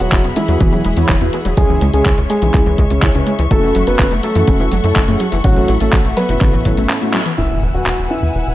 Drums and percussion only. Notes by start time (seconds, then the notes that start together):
0.00 closed hi-hat, cabasa
0.12 kick, clap, closed hi-hat, cabasa
0.24 closed hi-hat, cabasa
0.36 closed hi-hat, cabasa
0.48 closed hi-hat, cabasa
0.61 kick, closed hi-hat, cabasa
0.73 cabasa
0.85 closed hi-hat, cabasa
0.97 closed hi-hat, cabasa
1.09 kick, clap, closed hi-hat, cabasa
1.21 closed hi-hat, cabasa
1.33 closed hi-hat, cabasa
1.45 closed hi-hat, cabasa
1.57 kick, closed hi-hat, cabasa
1.69 cabasa
1.81 closed hi-hat, cabasa
1.94 closed hi-hat, cabasa
2.06 kick, clap, closed hi-hat, cabasa
2.18 closed hi-hat, cabasa
2.30 closed hi-hat, cabasa
2.42 closed hi-hat, cabasa
2.54 kick, clap, closed hi-hat, cabasa
2.66 cabasa
2.78 kick, closed hi-hat, cabasa
2.90 closed hi-hat, cabasa
3.02 kick, clap, closed hi-hat, cabasa
3.15 closed hi-hat, cabasa
3.27 closed hi-hat, cabasa
3.39 closed hi-hat, cabasa
3.51 kick, closed hi-hat, cabasa
3.63 cabasa
3.75 closed hi-hat, cabasa
3.87 closed hi-hat, cabasa
3.99 kick, clap, closed hi-hat, cabasa
4.11 closed hi-hat, cabasa
4.23 closed hi-hat, cabasa
4.35 closed hi-hat, cabasa
4.47 kick, closed hi-hat, cabasa
4.60 cabasa
4.72 closed hi-hat, cabasa
4.84 closed hi-hat, cabasa
4.96 kick, clap, closed hi-hat, cabasa
5.08 closed hi-hat, cabasa
5.20 closed hi-hat, cabasa
5.32 closed hi-hat, cabasa
5.44 kick, closed hi-hat, cabasa
5.56 closed hi-hat, cabasa
5.68 closed hi-hat, cabasa
5.80 closed hi-hat, cabasa
5.93 kick, clap, closed hi-hat, cabasa
6.05 closed hi-hat, cabasa
6.17 closed hi-hat, cabasa
6.29 closed hi-hat, cabasa
6.41 kick, clap, closed hi-hat, cabasa
6.53 cabasa
6.65 kick, closed hi-hat, cabasa
6.77 closed hi-hat, cabasa
6.90 clap, closed hi-hat, cabasa
7.02 closed hi-hat, cabasa
7.14 clap, closed hi-hat, cabasa
7.26 closed hi-hat, cabasa
7.86 clap